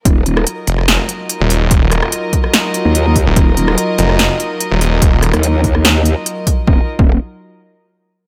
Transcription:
<<
  \new Staff \with { instrumentName = "String section" } { \time 4/4 \key ees \minor \tempo 4 = 145 <ges ees' f' bes' ees''>1~ | <ges ees' f' bes' ees''>1~ | <ges ees' f' bes' ees''>1~ | <ges ees' f' bes' ees''>1 |
<ges ees' f' bes' ees''>8 r2. r8 | }
  \new Staff \with { instrumentName = "Detuned saw bass" } { \clef bass \time 4/4 \key ees \minor r4. f,,8. r4 ees,,8.~ | ees,,8. r2. ees,,16 | r4. f,,8. r4 ees,,8.~ | ees,,8. r2. r16 |
r1 | }
  \new Staff \with { instrumentName = "Wobble bass" } { \clef bass \time 4/4 \key ees \minor ees,,8 ees,,8 r2. | r2 r8. ees,4 r16 | ees,,8 ees,,8 r2. | r8. ees,2 r4 r16 |
ees,,16 r8 ees,,8 r2 r8. | }
  \new DrumStaff \with { instrumentName = "Drums" } \drummode { \time 4/4 <hh bd>8 hh16 ss16 hh8 hh16 ss16 <hh sn>8 hh8 hh8 hho8 | <hh bd>8 <hh ss>16 ss16 hh8 <hh bd>16 ss16 <hh sn>8 hh8 hh8 <hho bd>8 | <hh bd>8 hh16 ss16 hh8 hh16 ss16 <hh sn>8 hh8 hh8 hho8 | <hh bd>8 <hh ss>16 <hh ss>16 hh8 <hho bd>16 ss16 <hh sn>8 hh8 hh8 <hho bd>8 |
bd8. bd16 r4 r4 r4 | }
>>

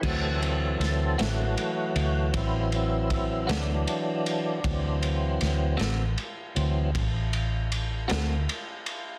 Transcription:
<<
  \new Staff \with { instrumentName = "Tonewheel organ" } { \time 12/8 \key d \mixolydian \tempo 4. = 52 <gis' a'>8 <c' a'>8 <c' a'>8 <a fis'>8 <a fis'>8 <a fis'>8 <c' e'>8 <c' e'>8 <c' e'>8 d'4.~ | d'8 r1 r4. | }
  \new Staff \with { instrumentName = "Tonewheel organ" } { \clef bass \time 12/8 \key d \mixolydian <e fis c'>1. | <e fis c'>4. r4 <e fis c'>8 r2. | }
  \new Staff \with { instrumentName = "Clean electric guitar" } { \time 12/8 \key d \mixolydian <d a c' fis'>8 r4 <d a c' fis'>8 r2 r8 <d a c' fis'>8 r4 | r4. <d a c' fis'>8 r2 r8 <d a c' fis'>8 r4 | }
  \new Staff \with { instrumentName = "Fingered electric bass" } { \clef bass \time 12/8 \key d \mixolydian d,4 d,8 a,,8 r8 d,8 a,,4. d,8 r4 | d,4 d,8 a,,8 r8 d,8 a,,4. d,8 r4 | }
  \new DrumStaff \with { instrumentName = "Drums" } \drummode { \time 12/8 <cymc bd>8 cymr8 <cymr sn>8 <cymr sn>8 cymr8 cymr8 <bd cymr>8 cymr8 <bd cymr>8 <cymr sn>8 cymr8 cymr8 | <bd cymr>8 cymr8 <cymr sn>8 <cymr sn>8 cymr8 cymr8 <bd cymr>8 cymr8 cymr8 <cymr sn>8 cymr8 cymr8 | }
>>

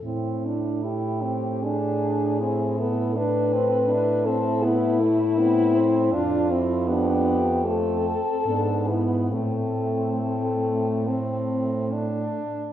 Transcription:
<<
  \new Staff \with { instrumentName = "French horn" } { \time 4/4 \key a \minor \tempo 4 = 76 e'4 g'4 gis'4. a'8 | b'4. a'8 e'2 | f'8 r8 g'4 a'4. e'8 | c'2. r4 | }
  \new Staff \with { instrumentName = "French horn" } { \time 4/4 \key a \minor c'8 d'8 e'8 c'8 d'4 e'8 e'8 | d'8 c'8 e'2 c'4 | d'8 e'8 d'8 r8 c'4 b4 | a2.~ a8 r8 | }
  \new Staff \with { instrumentName = "French horn" } { \time 4/4 \key a \minor r2 d'4 c'8 b8 | d'8 c'8 d'8 c'8 b8 a8 b8 c'8 | d'8 c'8 b4 a8 r8 d'8 b8 | a4 a4 c'4 d'4 | }
  \new Staff \with { instrumentName = "French horn" } { \clef bass \time 4/4 \key a \minor a,1~ | a,1 | f,2~ f,8 r8 gis,4 | a,2.~ a,8 r8 | }
>>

